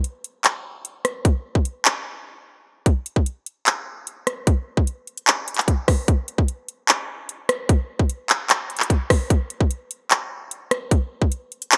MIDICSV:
0, 0, Header, 1, 2, 480
1, 0, Start_track
1, 0, Tempo, 402685
1, 1489, Time_signature, 4, 2, 24, 8
1, 14038, End_track
2, 0, Start_track
2, 0, Title_t, "Drums"
2, 50, Note_on_c, 9, 42, 63
2, 169, Note_off_c, 9, 42, 0
2, 290, Note_on_c, 9, 42, 71
2, 409, Note_off_c, 9, 42, 0
2, 530, Note_on_c, 9, 39, 99
2, 530, Note_on_c, 9, 42, 78
2, 649, Note_off_c, 9, 39, 0
2, 649, Note_off_c, 9, 42, 0
2, 1011, Note_on_c, 9, 42, 74
2, 1130, Note_off_c, 9, 42, 0
2, 1249, Note_on_c, 9, 37, 94
2, 1250, Note_on_c, 9, 42, 81
2, 1368, Note_off_c, 9, 37, 0
2, 1369, Note_off_c, 9, 42, 0
2, 1489, Note_on_c, 9, 36, 113
2, 1490, Note_on_c, 9, 42, 77
2, 1608, Note_off_c, 9, 36, 0
2, 1609, Note_off_c, 9, 42, 0
2, 1849, Note_on_c, 9, 36, 89
2, 1968, Note_off_c, 9, 36, 0
2, 1969, Note_on_c, 9, 42, 65
2, 2089, Note_off_c, 9, 42, 0
2, 2209, Note_on_c, 9, 39, 103
2, 2209, Note_on_c, 9, 42, 70
2, 2328, Note_off_c, 9, 39, 0
2, 2328, Note_off_c, 9, 42, 0
2, 3409, Note_on_c, 9, 36, 113
2, 3410, Note_on_c, 9, 42, 79
2, 3528, Note_off_c, 9, 36, 0
2, 3529, Note_off_c, 9, 42, 0
2, 3646, Note_on_c, 9, 42, 63
2, 3766, Note_off_c, 9, 42, 0
2, 3769, Note_on_c, 9, 36, 92
2, 3888, Note_off_c, 9, 36, 0
2, 3889, Note_on_c, 9, 42, 66
2, 4008, Note_off_c, 9, 42, 0
2, 4129, Note_on_c, 9, 42, 70
2, 4248, Note_off_c, 9, 42, 0
2, 4369, Note_on_c, 9, 39, 98
2, 4370, Note_on_c, 9, 42, 77
2, 4488, Note_off_c, 9, 39, 0
2, 4489, Note_off_c, 9, 42, 0
2, 4851, Note_on_c, 9, 42, 74
2, 4970, Note_off_c, 9, 42, 0
2, 5089, Note_on_c, 9, 37, 92
2, 5089, Note_on_c, 9, 42, 83
2, 5208, Note_off_c, 9, 37, 0
2, 5208, Note_off_c, 9, 42, 0
2, 5328, Note_on_c, 9, 42, 77
2, 5329, Note_on_c, 9, 36, 116
2, 5447, Note_off_c, 9, 42, 0
2, 5448, Note_off_c, 9, 36, 0
2, 5689, Note_on_c, 9, 36, 92
2, 5808, Note_off_c, 9, 36, 0
2, 5808, Note_on_c, 9, 42, 66
2, 5927, Note_off_c, 9, 42, 0
2, 6048, Note_on_c, 9, 42, 44
2, 6167, Note_off_c, 9, 42, 0
2, 6168, Note_on_c, 9, 42, 71
2, 6288, Note_off_c, 9, 42, 0
2, 6288, Note_on_c, 9, 39, 100
2, 6289, Note_on_c, 9, 42, 76
2, 6407, Note_off_c, 9, 39, 0
2, 6408, Note_off_c, 9, 42, 0
2, 6528, Note_on_c, 9, 42, 77
2, 6609, Note_off_c, 9, 42, 0
2, 6609, Note_on_c, 9, 42, 62
2, 6649, Note_on_c, 9, 39, 69
2, 6689, Note_off_c, 9, 42, 0
2, 6689, Note_on_c, 9, 42, 46
2, 6768, Note_off_c, 9, 39, 0
2, 6768, Note_on_c, 9, 36, 90
2, 6771, Note_off_c, 9, 42, 0
2, 6771, Note_on_c, 9, 42, 77
2, 6887, Note_off_c, 9, 36, 0
2, 6890, Note_off_c, 9, 42, 0
2, 7009, Note_on_c, 9, 36, 97
2, 7009, Note_on_c, 9, 37, 90
2, 7009, Note_on_c, 9, 46, 81
2, 7128, Note_off_c, 9, 36, 0
2, 7128, Note_off_c, 9, 37, 0
2, 7129, Note_off_c, 9, 46, 0
2, 7249, Note_on_c, 9, 36, 110
2, 7249, Note_on_c, 9, 42, 76
2, 7368, Note_off_c, 9, 36, 0
2, 7368, Note_off_c, 9, 42, 0
2, 7486, Note_on_c, 9, 42, 65
2, 7605, Note_off_c, 9, 42, 0
2, 7609, Note_on_c, 9, 36, 90
2, 7728, Note_off_c, 9, 36, 0
2, 7728, Note_on_c, 9, 42, 65
2, 7848, Note_off_c, 9, 42, 0
2, 7968, Note_on_c, 9, 42, 73
2, 8088, Note_off_c, 9, 42, 0
2, 8209, Note_on_c, 9, 39, 96
2, 8209, Note_on_c, 9, 42, 78
2, 8328, Note_off_c, 9, 39, 0
2, 8329, Note_off_c, 9, 42, 0
2, 8691, Note_on_c, 9, 42, 76
2, 8810, Note_off_c, 9, 42, 0
2, 8929, Note_on_c, 9, 37, 97
2, 8930, Note_on_c, 9, 42, 85
2, 9048, Note_off_c, 9, 37, 0
2, 9049, Note_off_c, 9, 42, 0
2, 9169, Note_on_c, 9, 36, 116
2, 9169, Note_on_c, 9, 42, 77
2, 9288, Note_off_c, 9, 36, 0
2, 9289, Note_off_c, 9, 42, 0
2, 9529, Note_on_c, 9, 36, 89
2, 9648, Note_off_c, 9, 36, 0
2, 9649, Note_on_c, 9, 42, 66
2, 9768, Note_off_c, 9, 42, 0
2, 9888, Note_on_c, 9, 39, 106
2, 9889, Note_on_c, 9, 42, 71
2, 10008, Note_off_c, 9, 39, 0
2, 10008, Note_off_c, 9, 42, 0
2, 10129, Note_on_c, 9, 39, 99
2, 10129, Note_on_c, 9, 42, 77
2, 10248, Note_off_c, 9, 39, 0
2, 10249, Note_off_c, 9, 42, 0
2, 10369, Note_on_c, 9, 42, 49
2, 10449, Note_off_c, 9, 42, 0
2, 10449, Note_on_c, 9, 42, 63
2, 10489, Note_on_c, 9, 39, 72
2, 10529, Note_off_c, 9, 42, 0
2, 10529, Note_on_c, 9, 42, 81
2, 10608, Note_off_c, 9, 39, 0
2, 10608, Note_on_c, 9, 36, 92
2, 10611, Note_off_c, 9, 42, 0
2, 10611, Note_on_c, 9, 42, 76
2, 10728, Note_off_c, 9, 36, 0
2, 10730, Note_off_c, 9, 42, 0
2, 10849, Note_on_c, 9, 36, 97
2, 10849, Note_on_c, 9, 37, 97
2, 10850, Note_on_c, 9, 46, 82
2, 10969, Note_off_c, 9, 36, 0
2, 10969, Note_off_c, 9, 37, 0
2, 10969, Note_off_c, 9, 46, 0
2, 11089, Note_on_c, 9, 36, 109
2, 11089, Note_on_c, 9, 42, 78
2, 11208, Note_off_c, 9, 36, 0
2, 11208, Note_off_c, 9, 42, 0
2, 11326, Note_on_c, 9, 42, 66
2, 11446, Note_off_c, 9, 42, 0
2, 11449, Note_on_c, 9, 36, 92
2, 11568, Note_off_c, 9, 36, 0
2, 11569, Note_on_c, 9, 42, 67
2, 11688, Note_off_c, 9, 42, 0
2, 11809, Note_on_c, 9, 42, 70
2, 11929, Note_off_c, 9, 42, 0
2, 12049, Note_on_c, 9, 39, 97
2, 12049, Note_on_c, 9, 42, 77
2, 12168, Note_off_c, 9, 39, 0
2, 12168, Note_off_c, 9, 42, 0
2, 12531, Note_on_c, 9, 42, 77
2, 12650, Note_off_c, 9, 42, 0
2, 12769, Note_on_c, 9, 37, 96
2, 12770, Note_on_c, 9, 42, 83
2, 12888, Note_off_c, 9, 37, 0
2, 12889, Note_off_c, 9, 42, 0
2, 13009, Note_on_c, 9, 36, 112
2, 13009, Note_on_c, 9, 42, 78
2, 13128, Note_off_c, 9, 36, 0
2, 13129, Note_off_c, 9, 42, 0
2, 13369, Note_on_c, 9, 36, 91
2, 13488, Note_off_c, 9, 36, 0
2, 13489, Note_on_c, 9, 42, 65
2, 13608, Note_off_c, 9, 42, 0
2, 13729, Note_on_c, 9, 42, 44
2, 13848, Note_off_c, 9, 42, 0
2, 13849, Note_on_c, 9, 42, 73
2, 13968, Note_off_c, 9, 42, 0
2, 13969, Note_on_c, 9, 39, 101
2, 13970, Note_on_c, 9, 42, 76
2, 14038, Note_off_c, 9, 39, 0
2, 14038, Note_off_c, 9, 42, 0
2, 14038, End_track
0, 0, End_of_file